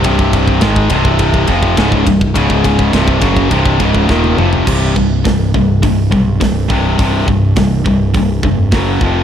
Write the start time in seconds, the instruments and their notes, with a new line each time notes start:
0.04 picked electric bass C1, distorted electric guitar C2 G2 C3, kick, ride
0.19 kick
0.33 kick, ride
0.48 kick
0.61 picked electric bass G#1, distorted electric guitar G#2 D#3 G#3, kick, snare, ride
0.76 kick
0.90 picked electric bass C1, distorted electric guitar C2 G2 C3, kick, ride
1.05 kick
1.19 kick, ride
1.34 kick
1.47 picked electric bass F1, distorted electric guitar F2 C3 F3, kick, ride
1.63 kick
1.77 picked electric bass C#1, distorted electric guitar C#2 G#2 C#3, kick, snare, ride
1.92 kick
2.07 picked electric bass C1, distorted electric guitar C2 G2, kick, ride
2.21 kick
2.34 picked electric bass C#1, distorted electric guitar C#2 G#2 C#3, kick, ride
2.50 kick
2.64 kick, ride
2.79 kick
2.91 picked electric bass C1, distorted electric guitar C2 G2 C3, kick, snare, ride
3.08 kick
3.21 picked electric bass F#1, distorted electric guitar F#2 C#3 F#3, kick, ride
3.37 kick
3.50 picked electric bass C1, distorted electric guitar C2 G2 C3, kick, ride
3.65 kick
3.80 picked electric bass C#1, distorted electric guitar C#2 G#2 C#3, kick, ride
3.94 kick
4.09 picked electric bass D#1, distorted electric guitar D#2 A#2 D#3, kick, snare
4.24 high tom
4.37 picked electric bass F1, distorted electric guitar F2 C3 F3, mid tom
4.53 floor tom
4.66 picked electric bass C1, distorted electric guitar C2 G2 C3, kick, crash
4.95 picked electric bass C1, distorted electric guitar C2 G2, kick
5.24 picked electric bass C1, distorted electric guitar C2 G2, kick, snare, open hi-hat
5.54 picked electric bass C1, distorted electric guitar C2 G2, kick
5.82 picked electric bass C1, distorted electric guitar C2 G2, kick, open hi-hat
6.11 picked electric bass B1, distorted electric guitar C2 G2, kick
6.40 picked electric bass C1, distorted electric guitar C2 G2, kick, snare, open hi-hat
6.70 distorted electric guitar C2 G2 C3, kick
6.99 picked electric bass C1, distorted electric guitar C2 G2 C3, kick, open hi-hat
7.28 picked electric bass C1, distorted electric guitar C2 G2, kick
7.56 picked electric bass C1, distorted electric guitar C2 G2, kick, snare, open hi-hat
7.86 picked electric bass C1, distorted electric guitar C2 G2, kick
8.14 picked electric bass C1, distorted electric guitar C2 G2, kick, open hi-hat
8.43 picked electric bass F1, distorted electric guitar C2 G2, kick
8.72 picked electric bass F#1, distorted electric guitar F#2 C#3 F#3, kick, snare, open hi-hat
9.01 picked electric bass F1, distorted electric guitar F2 C3 F3, kick